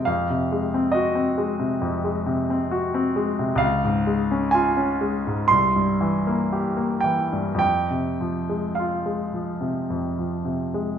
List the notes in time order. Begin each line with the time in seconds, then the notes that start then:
0.05 F2 F5
0.30 C3
0.52 G#3
0.74 C4
0.92 F#4 D#5
1.15 C4
1.38 G#3
1.59 C3
1.81 F2
2.05 G#3
2.26 C3
2.50 C4
2.71 F#4
2.94 C4
3.16 G#3
3.39 C3
3.55 C#2 F5
3.85 G#2
4.07 G#3
4.31 C#4
4.51 F4 G#5
4.77 C#4
5.01 G#3
5.27 G#2
5.48 C2 C6
5.76 G2
6.01 E3
6.27 A#3
6.53 G4
6.77 A#3
7.01 E3 G5
7.32 G2
7.55 F2
7.59 G5
7.91 C3
8.21 F3
8.49 G#3
8.75 F5
8.79 F4
9.06 G#3
9.34 F3
9.61 C3
9.90 F2
10.19 F3
10.45 C3
10.74 G#3